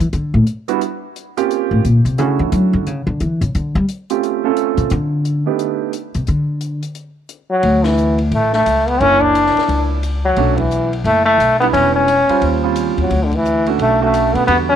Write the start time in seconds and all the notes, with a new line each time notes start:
0.00 E3, closed hi-hat
0.13 D3, closed hi-hat
0.34 A2
0.47 closed hi-hat
0.68 G3 B3 D4 E4 F#4, closed hi-hat
0.81 closed hi-hat
1.16 closed hi-hat
1.37 A#3 C4 C#4 F4 G4, closed hi-hat
1.51 closed hi-hat
1.71 A2
1.85 A#2, closed hi-hat
2.05 C3, closed hi-hat
2.18 C#3 A3 C#4 D4 E4 F#4, closed hi-hat
2.39 E3
2.52 F#3, closed hi-hat
2.73 D3
2.87 C#3, closed hi-hat
3.07 D3
3.20 E3, closed hi-hat
3.41 C#3, closed hi-hat
3.55 D3, closed hi-hat
3.75 G3
3.89 closed hi-hat
4.10 A3 C4 C#4 F4 G4, closed hi-hat
4.23 closed hi-hat
4.44 A3 C4 C#4 F4 A4
4.57 closed hi-hat
4.77 C3, closed hi-hat
4.90 D3, closed hi-hat
5.25 closed hi-hat
5.46 A3 B3 D4 D#4 G4
5.59 closed hi-hat
5.93 closed hi-hat
6.14 C3, closed hi-hat
6.27 D3, closed hi-hat
6.61 closed hi-hat
6.83 closed hi-hat
6.95 closed hi-hat
7.29 closed hi-hat
7.50 F#3
7.63 D2, ride
7.84 E3, snare, ride
7.97 hi-hat pedal
8.18 ride
8.31 A1 A3, ride
8.53 A3, snare
8.66 C#2, hi-hat pedal, ride
8.88 B3, ride
9.00 F#1 A#3 C#4 D4 E4 C#5, ride
9.22 D4, kick
9.35 hi-hat pedal, ride
9.46 snare
9.56 muted upright bass stroke, snare, ride
9.68 C#2, ride
10.03 hi-hat pedal, ride
10.25 F#3
10.37 B1 A3 C#4 D4 F#4, ride
10.58 E3, kick, ride
10.71 hi-hat pedal
10.93 ride
11.04 F#1 A3, ride
11.25 A3
11.38 B1, hi-hat pedal, ride
11.60 G3 B3 D4 E4, ride
11.73 E1 C#4, ride
11.96 C#4
12.08 hi-hat pedal, ride
12.29 G3 C#4 F4 C5, muted upright bass stroke, ride
12.42 D#2, ride
12.63 G3 C4 C#4 F4
12.76 hi-hat pedal, ride
12.97 D#2 F#3, ride
13.10 D2, ride
13.25 D3
13.32 E3, kick, ride
13.45 hi-hat pedal
13.66 A3 C#4 D4 F#4, ride
13.79 B1 A3, ride
14.01 A3 C#4 D4 F#4
14.14 hi-hat pedal, ride
14.34 B2 B3, ride
14.47 E2 D3 G3 B3 F#4, ride
14.69 C#4